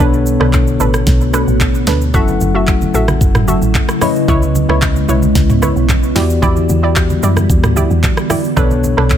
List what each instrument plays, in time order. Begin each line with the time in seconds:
Already playing: ambient pad D3 B3
0.00 log drum bass B1, tine electric piano B2 B3 D4 A4 C#5, ambient pad A3 F#4, synth pluck D4 A4 B4, kick, shaker
0.13 shaker
0.26 shaker
0.40 log drum bass B1, synth pluck D4 A4 B4, cross-stick
0.53 kick, clap, shaker
0.67 shaker
0.80 log drum bass A1, synth pluck D4 A4 B4, shaker
0.94 cross-stick, shaker
1.07 log drum bass B1, kick, snare, shaker
1.21 shaker
1.33 synth pluck D4 A4 B4, cross-stick, shaker
1.48 log drum bass A1, shaker
1.60 kick, clap, shaker
1.75 shaker
1.87 log drum bass D2, synth pluck D4 A4 B4, snare, shaker
2.01 shaker
2.14 log drum bass F#1, ambient pad C#3 F#3 A3 E4, tine electric piano F#3 C#4 E4 A4 F#5, synth pluck F#4 A4 E5, kick, low conga, shaker
2.28 high conga, shaker
2.41 log drum bass F#1, high conga, shaker
2.55 synth pluck F#4 A4 E5
2.67 kick, clap, shaker
2.81 high conga, shaker
2.94 log drum bass A1, synth pluck F#4 A4 E5, shaker
3.08 cross-stick, high conga, shaker
3.21 log drum bass F#1, kick, shaker
3.35 log drum bass F#1, cross-stick, mid tom, shaker
3.48 synth pluck F#4 A4 E5, high conga, shaker
3.62 log drum bass A1, shaker
3.74 kick, clap, low conga, shaker
3.89 cross-stick, shaker
4.01 tine electric piano C#3 C#4 E4 B4 D#5, ambient pad G#3 B3, synth pluck E4 B4 C#5, cross-stick, open hi-hat, low conga, shaker
4.16 shaker
4.28 log drum bass C#2, synth pluck E4 B4 C#5, kick, low conga, shaker
4.42 high conga, shaker
4.55 high conga, shaker
4.69 log drum bass C#2, synth pluck E4 B4 C#5, cross-stick
4.82 kick, clap, shaker
4.96 high conga, shaker
5.09 log drum bass B1, synth pluck E4 B4 C#5, shaker
5.22 high conga, shaker
5.35 log drum bass C#2, kick, snare, shaker
5.50 mid tom, shaker
5.62 synth pluck E4 B4 C#5, cross-stick, high conga, shaker
5.76 log drum bass B1, shaker
5.89 kick, clap, low conga, shaker
6.03 shaker
6.15 log drum bass E2, ambient pad D3 G3 B3, tine electric piano E3 B3 F#4 G4 D5, synth pluck E4 G4 D5, snare, open hi-hat, low conga, shaker
6.30 shaker
6.42 log drum bass E2, synth pluck E4 G4 D5, kick, low conga, shaker
6.56 high conga, shaker
6.69 log drum bass E2, high conga, shaker
6.83 synth pluck E4 G4 D5
6.96 kick, clap, shaker
7.10 high conga, shaker
7.23 log drum bass F#2, synth pluck E4 G4 D5, shaker
7.37 cross-stick, high conga, shaker
7.50 log drum bass E2, kick, shaker
7.64 log drum bass D2, cross-stick, mid tom, shaker
7.76 synth pluck E4 G4 D5, high conga, shaker
7.91 log drum bass E2, shaker
8.03 kick, clap, low conga, shaker
8.17 cross-stick, shaker
8.30 synth pluck E4 G4 D5, cross-stick, open hi-hat, low conga, shaker
8.44 shaker
8.56 log drum bass B1, tine electric piano B2 B3 D4 A4 C#5, ambient pad A3 B3 F#4, synth pluck D4 A4 B4, kick, low conga, shaker
8.71 high conga, shaker
8.84 high conga, shaker
8.97 log drum bass B1, synth pluck D4 A4 B4, cross-stick
9.10 kick, clap, shaker